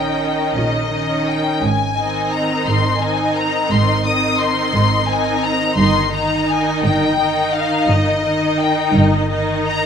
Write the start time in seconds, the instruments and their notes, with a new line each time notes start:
Already playing: double bass section A#1, cello section A#2, viola section D#3 C#4, violin section D#4 D#5 G5
0.55 double bass section A#1, cello section A#2, violin section D#5
0.91 viola section D#3 C#4, violin section D#4 D#5
1.27 violin section G5
1.62 double bass section G#1, cello section G#2, violin section G#5
1.97 viola section D#3 C4, violin section D#4 D#5
2.33 violin section A#5
2.67 double bass section G#1, cello section G#2, violin section C6
3.01 viola section D#3 C4, violin section D#4 D#5 G#5
3.35 violin section A#5
3.71 double bass section G#1, cello section G#2, violin section C6
4.05 viola section D#3 C4, violin section D#4 D#5 D#6
4.39 violin section C6
4.74 double bass section G#1, cello section G#2
5.07 viola section D#3 C4, violin section D#4 D#5 G#5
5.43 violin section A#5
5.77 double bass section G1, cello section G2, viola section D#3 D#4, violin section D#4 D#5 C6
6.13 viola section D#3 D#4, violin section D#4 D#5 A#5
6.50 violin section G#5
6.84 double bass section G1, cello section G2, violin section G5
7.20 viola section D#3 D#4, violin section D#4 D#5
7.54 violin section F5
7.88 double bass section G1, cello section G2, violin section D#5
8.24 viola section D#3 D#4, violin section D#4 D#5
8.60 violin section G5
8.95 double bass section G1, cello section G2
9.30 viola section D#3 D#4, violin section D#4 D#5
9.66 violin section A#5